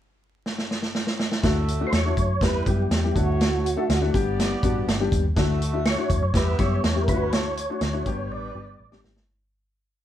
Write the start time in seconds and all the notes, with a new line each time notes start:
0.46 snare
0.58 snare
0.71 snare
0.82 snare
0.95 snare
1.07 snare
1.19 snare
1.32 snare
1.43 D2 A3 D4 E4 F#4 E5, kick, snare, closed hi-hat
1.68 closed hi-hat
1.80 A3 D4 E4 F#4
1.87 C5
1.92 E2 C#5, snare, closed hi-hat
2.05 A3 D4 E4 F#4
2.17 F#2, kick, closed hi-hat
2.41 E2 G3 B3 E4 G4 B4, kick, snare, closed hi-hat
2.66 F#2 G3 B3 E4 G4, kick, closed hi-hat
2.91 E2, snare, closed hi-hat
3.03 G3 B3 E4 G4
3.14 D2 A3 D4 E4 F#4 C#5, kick, closed hi-hat
3.41 snare, closed hi-hat
3.66 closed hi-hat
3.76 A3 D4 E4 A4
3.89 D2, snare, closed hi-hat
4.01 A3 D4 E4 F#4
4.12 G1 G3 B3 D4 G4 D5, kick, closed hi-hat
4.39 snare, closed hi-hat
4.63 A1 G3 B3 D4 F#4, kick, closed hi-hat
4.87 G1, snare, closed hi-hat
5.00 G3 B3 D4 G4
5.12 D#2, kick, closed hi-hat
5.36 D2 A3 D4 E4 F#4 E5, kick, snare, closed hi-hat
5.62 closed hi-hat
5.73 A3 D4 E4 F#4
5.85 C#5, snare, closed hi-hat
5.98 A3 D4 E4 F#4
6.10 E2, kick, closed hi-hat
6.22 F#2
6.34 E2 G3 B3 E4 G4 B4 E5, kick, snare, closed hi-hat
6.59 F#2 G3 B3 E4 G4 C#5, kick, snare, closed hi-hat
6.84 E2, snare, closed hi-hat
6.95 G3 B3 E4 G4
7.02 A#4
7.08 D2 A3 D4 E4 F4 F#4 B4 C#5, kick, closed hi-hat
7.14 F#4
7.32 C#5, snare, closed hi-hat
7.57 closed hi-hat
7.69 A3 D4 E4 F#4
7.81 D2, snare, closed hi-hat
7.93 A3 D4 E4 F#4
8.06 G1 G3 B3 D4 G4 B4, kick, closed hi-hat
8.31 A1 D5
8.55 G1 G3 B3 D4 G4
8.80 A1
8.92 G3 B3 D4 G4, snare
9.04 G#1, snare
9.16 snare